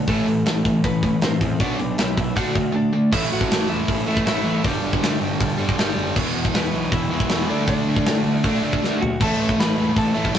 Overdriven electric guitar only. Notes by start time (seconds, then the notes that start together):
0.09 A2 E3 A3
0.27 A2 E3
0.46 A2 E3
0.66 A2 E3
0.85 A2 E3
1.03 A2 E3
1.23 A2 E3
1.41 A2 E3
1.60 B2 F#3 B3
1.79 B2 F#3
1.98 B2 F#3
2.17 B2 F#3
2.36 D3 A3 D4
2.55 D3 A3
2.72 D3 A3
2.93 D3 A3
3.12 A2 E3 A3
4.07 A2 E3 A3
4.25 A2 E3 A3
4.63 G2 D3 G3
5.58 G2 D3 G3
5.77 G2 D3 G3
6.16 E2 B2 E3
7.10 E2 B2 E3
7.28 E2 B2 E3
7.47 D3 A3 D4
8.44 D3 A3 D4
8.63 D3 A3 D4
9.20 A2 E3 A3
10.14 A2 E3 A3
10.34 A2 E3